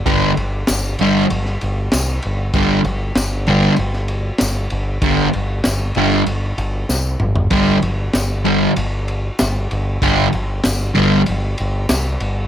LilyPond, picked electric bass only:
\new Staff \with { instrumentName = "Picked electric bass" } { \clef bass \time 4/4 \key c \lydian \tempo 4 = 96 g,,8 g,,8 g,,8 g,,8 g,,8 g,,8 c,8 g,,8 | g,,8 g,,8 g,,4 g,,4 g,,8 g,,8 | g,,8 g,,8 g,,8 g,,8 g,,8 g,,8 c,8 g,,8 | g,,8 g,,8 g,,4 g,,4 g,,8 g,,8 |
g,,8 g,,8 g,,8 g,,8 g,,8 g,,8 c,8 g,,8 | }